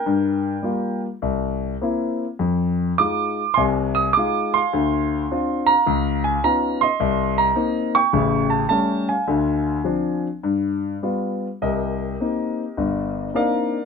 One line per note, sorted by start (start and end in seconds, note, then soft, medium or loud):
0.00 0.99 A#4 medium
0.00 1.00 G5 medium
0.06 0.55 G2 medium
0.63 1.04 G3 soft
0.63 1.05 A#3 soft
0.63 1.05 F4 medium
1.22 1.73 C2 medium
1.81 2.23 A#3 soft
1.81 2.24 C4 soft
1.81 2.24 E4 medium
2.39 2.91 F2 medium
2.98 3.41 G#3 soft
2.98 3.41 D#4 soft
2.98 3.41 F4 soft
2.98 3.58 D6 medium
3.54 4.08 C2 medium
3.54 4.08 C3 medium
3.54 4.69 G#5 medium
3.54 3.63 C6 medium
3.95 4.13 D#6 medium
4.13 4.58 G#3 soft
4.13 4.58 D#4 soft
4.13 4.56 D6 medium
4.18 4.59 F4 medium
4.54 5.66 F5 medium
4.54 5.65 C6 medium
4.73 5.23 D2 medium
5.31 5.72 C4 soft
5.31 5.72 D4 soft
5.31 5.72 F4 medium
5.66 6.79 F5 medium
5.66 6.21 A#5 loud
5.87 6.36 C#2 medium
6.24 6.42 G#5 medium
6.44 6.85 B3 soft
6.44 6.85 C#4 soft
6.44 6.85 D#4 soft
6.44 6.85 F4 medium
6.44 6.80 A#5 medium
6.81 7.92 D#5 medium
6.81 7.40 C6 medium
7.00 7.49 C2 medium
7.38 7.91 A#5 medium
7.56 7.97 A#3 medium
7.56 7.97 C4 soft
7.56 7.97 D#4 medium
7.95 9.05 G5 medium
7.95 8.48 C#6 medium
8.13 8.63 A1 medium
8.13 8.63 C#3 medium
8.50 8.67 A5 medium
8.69 9.11 G3 soft
8.69 9.11 A3 soft
8.69 9.12 C#4 medium
8.69 9.06 A5 medium
9.09 10.20 F5 medium
9.09 10.20 G#5 medium
9.27 9.77 D2 medium
9.27 9.77 D3 medium
9.84 10.26 F3 soft
9.84 10.26 C4 soft
9.84 10.27 D4 medium
10.43 10.95 G2 medium
11.03 11.46 G3 soft
11.03 11.46 B3 soft
11.03 11.46 F4 soft
11.62 12.13 C2 medium
11.62 13.31 G4 soft
11.62 13.31 A#4 soft
11.62 13.40 D#5 medium
12.20 12.62 A#3 soft
12.20 12.62 C4 soft
12.20 12.63 D#4 soft
12.77 13.27 G1 medium
12.77 13.27 G2 medium
13.34 13.75 A#3 soft
13.34 13.76 C4 soft
13.34 13.76 D4 soft
13.34 13.76 D#4 soft
13.34 13.85 A#4 medium
13.34 13.85 D5 medium
13.34 13.85 F5 medium